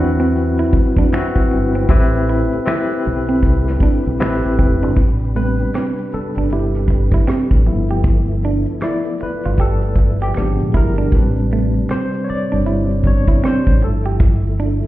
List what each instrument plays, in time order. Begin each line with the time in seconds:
Already playing: tonewheel organ F#3 C4 E4 B4, tine electric piano C4 E4 F#4 B4, clean electric guitar D4
0.00 fingered electric bass E2
0.20 clean electric guitar C4, maracas
0.35 closed hi-hat, maracas
0.59 clean electric guitar E4, maracas
0.73 muted clean electric guitar stroke, muted fingered electric bass stroke, kick, closed hi-hat, maracas
0.97 fingered electric bass F#2, clean electric guitar D4, kick, maracas
1.12 tine electric piano C4 E4 F#4 B4, clean electric guitar C4, finger snap, snare, closed hi-hat, maracas
1.36 kick, maracas
1.50 fingered electric bass G1, muted clean electric guitar stroke, closed hi-hat, maracas
1.74 clean electric guitar C4, maracas
1.88 fingered electric bass A1, tonewheel organ A3 G4, tine electric piano C4 E4 G4 B4, kick, closed hi-hat, maracas
2.16 maracas
2.27 clean electric guitar E4, closed hi-hat, maracas
2.52 muted fingered electric bass stroke, maracas
2.65 tine electric piano C4 E4 G4, clean electric guitar E4, finger snap, snare, closed hi-hat, maracas
2.68 tine electric piano B4, finger snap
2.90 maracas
3.04 fingered electric bass B1, muted clean electric guitar stroke, closed hi-hat
3.28 clean electric guitar C4, maracas
3.42 fingered electric bass C2, kick, closed hi-hat, maracas
3.67 snare, maracas
3.80 clean electric guitar D4, muted fingered electric bass stroke, kick, closed hi-hat, maracas
4.06 fingered electric bass B1, maracas
4.20 fingered electric bass A1, tine electric piano C4 E4 G4 B4, finger snap, muted clean electric guitar stroke, snare, closed hi-hat, maracas
4.22 finger snap
4.43 fingered electric bass A1, closed hi-hat, maracas
4.58 fingered electric bass F1, clean electric guitar C4, kick, closed hi-hat, maracas
4.81 fingered electric bass G1, clean electric guitar D4, maracas
4.95 fingered electric bass A1, tonewheel organ C3 D4 G4 B4, kick, closed hi-hat, maracas
5.20 closed hi-hat, maracas
5.35 tine electric piano G3 B3 C4 D4 B4, clean electric guitar A3, closed hi-hat, maracas
5.59 maracas
5.73 clean electric guitar C4, finger snap, cross-stick, closed hi-hat, maracas
5.98 maracas
6.11 tine electric piano A4, muted fingered electric bass stroke, muted clean electric guitar stroke, closed hi-hat, maracas
6.35 fingered electric bass G1, clean electric guitar D4, maracas
6.49 clean electric guitar E4, tine electric piano G4, closed hi-hat, maracas
6.74 cross-stick, maracas
6.88 muted clean electric guitar stroke, kick, closed hi-hat, maracas
7.12 clean electric guitar E4, kick, maracas
7.27 clean electric guitar C4, finger snap, cross-stick, closed hi-hat, maracas
7.51 fingered electric bass A1, kick, maracas
7.65 fingered electric bass G1, tonewheel organ F3 A3 B3 E4, tine electric piano F3 A3 B3 E4, muted clean electric guitar stroke, closed hi-hat
7.89 clean electric guitar G4, maracas
8.03 kick, closed hi-hat, maracas
8.31 maracas
8.42 clean electric guitar D4, closed hi-hat, maracas
8.66 maracas
8.80 tine electric piano F3 A3 B3 E4 D5, clean electric guitar E4, finger snap, cross-stick, closed hi-hat, maracas
9.05 maracas
9.18 muted clean electric guitar stroke, closed hi-hat, maracas
9.23 tine electric piano B4, muted fingered electric bass stroke
9.41 cross-stick, maracas
9.46 fingered electric bass G1, clean electric guitar F4
9.57 clean electric guitar G4, kick, closed hi-hat, maracas
9.61 tine electric piano A4
9.81 maracas
9.96 muted clean electric guitar stroke, kick, closed hi-hat, maracas
10.20 clean electric guitar G4, tine electric piano G4, closed hi-hat, maracas
10.34 fingered electric bass G#1, tonewheel organ D3 G#3, tine electric piano F3 B3 D4, finger snap, muted clean electric guitar stroke, cross-stick, closed hi-hat, maracas
10.60 fingered electric bass A#1, maracas
10.73 fingered electric bass G1, clean electric guitar E4, tine electric piano A#4, kick, closed hi-hat
10.96 clean electric guitar D4, maracas
11.11 fingered electric bass A1, tonewheel organ C3 G3 D4, tine electric piano G3 B4, kick, closed hi-hat, maracas
11.15 tine electric piano C4 D4
11.35 closed hi-hat, maracas
11.51 clean electric guitar A3, closed hi-hat, maracas
11.74 maracas
11.89 clean electric guitar C4, tine electric piano C5, finger snap, cross-stick, closed hi-hat, maracas
12.13 maracas
12.24 tine electric piano C#5, open hi-hat, maracas
12.29 tine electric piano D5, muted clean electric guitar stroke, muted fingered electric bass stroke
12.51 fingered electric bass G1, clean electric guitar D4, maracas
12.66 clean electric guitar E4, closed hi-hat, maracas
12.91 maracas
13.04 tine electric piano C3 G3 B3 D4 C#5, muted clean electric guitar stroke, kick, closed hi-hat, maracas
13.27 clean electric guitar E4, kick, closed hi-hat, maracas
13.43 clean electric guitar C4, tine electric piano C5, finger snap, cross-stick, closed hi-hat, maracas
13.67 fingered electric bass A1, kick, maracas
13.80 fingered electric bass G1, tonewheel organ F3 A3 E4, tine electric piano A4, muted clean electric guitar stroke, closed hi-hat
14.05 clean electric guitar G4, maracas
14.19 kick, closed hi-hat, maracas
14.47 maracas
14.59 clean electric guitar D4, closed hi-hat, maracas
14.83 maracas